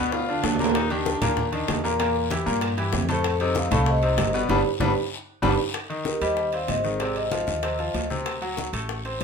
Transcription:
Already playing: D2 B2 B3 B4 D5
0.12 F4, high bongo, high conga, high timbale, long guiro
0.29 D3 D4 F4, high conga
0.43 D#2 D4, high bongo, low bongo, high conga, low timbale, short guiro
0.54 low timbale
0.59 A#2 A#3 A#4, high bongo, high conga, short guiro
0.64 low timbale
0.74 D#4, high bongo, high conga, high timbale, long guiro
0.90 D#3 D4 G4, high bongo, high conga, high timbale
1.06 high bongo, high conga, low timbale, short guiro
1.22 D#2 A#2 A#3 A#4, high bongo, high conga, low conga, high timbale, short guiro
1.37 high bongo, high conga, low conga, long guiro
1.52 D#3 D4 D#4, high bongo, high timbale
1.68 E2, high bongo, low bongo, high conga, high timbale, low timbale, short guiro
1.84 A#2 A#3 A#4, short guiro
2.00 A#2 A#3 A#4, high bongo, high conga, high timbale, long guiro
2.15 high bongo, high conga
2.30 E3 E4 G4, high bongo, high conga, high timbale, low timbale, short guiro
2.46 G2 A#2 A#3 A#4, high bongo, high conga, short guiro
2.61 high bongo, high conga, high timbale, long guiro
2.77 E3 E4 G4, high conga, high timbale
2.93 F2, high bongo, low bongo, high conga, low timbale, short guiro
3.09 A2 A3 A4 C5, high bongo, high conga, high timbale, short guiro
3.24 high bongo, high conga, high timbale, long guiro
3.40 C3 C4 D#4, high bongo, high conga, high timbale
3.55 C5 F5, high bongo, high conga, low timbale, short guiro
3.71 C2 A2 A3 A4 D5 F5, high bongo, high conga, low conga, high timbale, short guiro
3.86 C5 D#5, high bongo, long guiro
4.02 C3 C4 D#4, high bongo, high conga, high timbale
4.17 G1, high bongo, low bongo, high conga, high timbale, low timbale, short guiro
4.33 B2 B3 B4 D5, high conga, short guiro
4.49 G1 G3 B3 D4 G4 B4 D5, low bongo, high conga, high timbale, long guiro
4.80 G1 G3 B3 D4 G4 B4 D5, low bongo, high conga, high timbale, long guiro
5.42 G1 G3 B3 D4 G4 B4 D5, low bongo, high conga, high timbale, long guiro
5.74 high bongo, high conga, high timbale, long guiro
5.90 D#3 D#4, high conga, high timbale
6.05 G4 A#4, high bongo, high conga, short guiro
6.21 D#2 G3 G4 C5 D#5, high bongo, high conga, high timbale, short guiro
6.37 high bongo, high conga, long guiro
6.52 C4 C5 D5 F5, high bongo, high conga, high timbale
6.68 G#1 C5 D#5, high bongo, low bongo, high conga, high timbale, low timbale, short guiro
6.84 D#3 D#4 G#4 C5, high bongo, short guiro
7.00 C3 C4 G#4 D5, high bongo, high conga, high timbale, long guiro
7.16 C5 D#5, high conga, high timbale
7.31 F3 F4, high bongo, high conga, high timbale, short guiro
7.47 D#2, high bongo, high conga, short guiro
7.63 C3 C4, high bongo, high conga, high timbale, long guiro
7.79 F3 F4, high bongo, high conga, high timbale
7.94 D2, high bongo, low bongo, high conga, high timbale, low timbale, short guiro
8.10 C3 C4, high bongo, high conga, short guiro
8.26 high bongo, high timbale, long guiro
8.42 F#3 F#4, high conga, high timbale
8.57 high bongo, high conga, short guiro
8.73 A1 A3 A4, high bongo, high timbale, short guiro
8.89 high bongo, high conga, long guiro
9.05 C4 C5, high bongo, high conga, high timbale
9.21 G1, high bongo, low bongo, short guiro

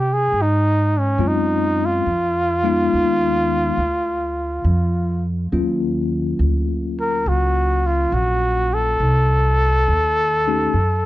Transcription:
Already playing: C3
0.00 G4
0.14 G#4
0.32 G#2
0.42 D#4
0.99 C#4
1.18 F#2 G#3 C4 C#4 F4
1.28 D#4
1.85 F4
2.06 F2
2.63 G#3 B3 D#4 F4
2.93 D#2
3.77 D2
4.64 F2
5.52 D#2 F#3 A#3 C#4 F4
6.39 D2
7.01 A#4
7.26 C#2 F#4
7.87 F4
8.12 A#1 F#4
8.74 A4
9.00 C2
9.88 D#2
10.47 A3 C#4 D#4 G4
10.73 F#2

